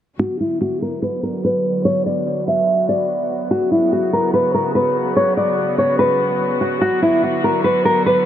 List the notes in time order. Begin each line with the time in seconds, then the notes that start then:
0.19 D3 F#3 B3 F#4
0.40 E4
0.61 F#4
0.82 A#4
1.02 B4
1.23 A#4
1.45 B4
1.85 C#5
2.06 D5
2.48 E5
2.89 D5
3.51 C#3 F#3 F#4
3.71 E4
3.93 F#4
4.13 A#4
4.34 B4
4.54 A#4
4.75 B4
5.17 C#5
5.37 D5
5.78 C#5
5.99 B4
6.61 F#4
6.81 D3 F#4
7.02 E4
7.23 F#4
7.44 A#4
7.64 B4
7.85 A#4
8.06 B4